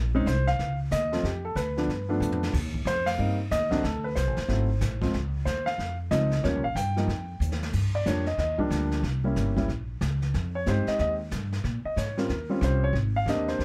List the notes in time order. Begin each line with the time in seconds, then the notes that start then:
Already playing: A#1
0.15 G#3 C4 C#4 D#4
0.26 C2 C5, snare, hi-hat pedal
0.47 F5, snare
0.59 C#2, brush sweep, snare
0.91 D#2 D#5, snare, hi-hat pedal
1.12 F3 A3 C4 F4, snare
1.23 F2 G4, brush sweep, snare
1.45 A4
1.55 D2 B4, snare, hi-hat pedal
1.77 F3 A3 B3 D4, snare
1.88 G2, brush sweep, snare
2.09 F3 A3 B3 D4
2.20 F2, hi-hat pedal
2.32 floor tom
2.43 snare
2.54 D#2, brush sweep, kick, snare, crash
2.74 kick
2.85 F2 C5, snare, hi-hat pedal
3.06 F5, snare, ride
3.18 G2 G3 A#3 C4 D#4, brush sweep
3.51 D#2 D#5, snare, hi-hat pedal
3.71 F#3 A3 C4 D4, kick, snare
3.83 D2 A4, brush sweep, snare
4.04 B4
4.15 C2 C5, snare, hi-hat pedal
4.27 A1
4.37 F#1, snare
4.48 G#1 F#3 A3 C4 E4, brush sweep, snare
4.81 A1, snare, hi-hat pedal
5.01 F3 G#3 C4 F4, kick, snare
5.13 C#2, brush sweep, snare
5.45 D#2 C5, snare, hi-hat pedal
5.66 F5, snare
5.78 F2, brush sweep, snare
6.11 C#2 F3 G#3 C4 D#4 D#5, snare, hi-hat pedal
6.31 snare
6.43 D#2 F3 G3 A#3 C#4 C#5, brush sweep, snare
6.55 C#2
6.64 A#1 F5
6.75 G2 G5, snare, hi-hat pedal
6.96 F3 G3 A#3 D#4, snare
7.08 F2, brush sweep, snare
7.40 D#2, hi-hat pedal
7.52 snare
7.63 snare
7.73 G2, brush sweep, kick, snare, crash
7.95 D5
8.06 F2 F3 G3 A#3 D4 C#5, snare, hi-hat pedal
8.26 D#5, snare
8.38 D#2 D#5, brush sweep, snare
8.58 F3 G3 A#3 D4, kick
8.70 D2, snare, hi-hat pedal
8.91 snare
9.03 C2, brush sweep, snare
9.24 G3 A#3 C#4 E4
9.36 G1, snare, hi-hat pedal
9.56 G3 A#3 C#4 E4, kick, snare
9.68 A#1, brush sweep, snare
10.01 C#2, snare, hi-hat pedal
10.22 snare
10.34 F2, brush sweep, snare
10.55 C#5
10.66 G2 G#3 C4 D#4 G4 C5, snare, hi-hat pedal
10.87 D#5, muted upright bass stroke, snare
10.99 D#2 D#5, brush sweep, snare
11.31 G2, snare, hi-hat pedal
11.52 snare
11.64 A#2, brush sweep, snare
11.85 D#5, muted upright bass stroke
11.96 G#2 C#5, snare, hi-hat pedal
12.17 G3 C4 C#4 F4 A#4, snare
12.29 D#2, brush sweep, snare
12.50 G3 C4 C#4 F4
12.61 C2 C5, snare, hi-hat pedal
12.84 C#5
12.93 G#1, brush sweep, snare
13.16 F5
13.26 D#2 A#3 C4 D4 G4 D#5, snare, hi-hat pedal
13.48 C5, snare
13.59 D2, brush sweep, snare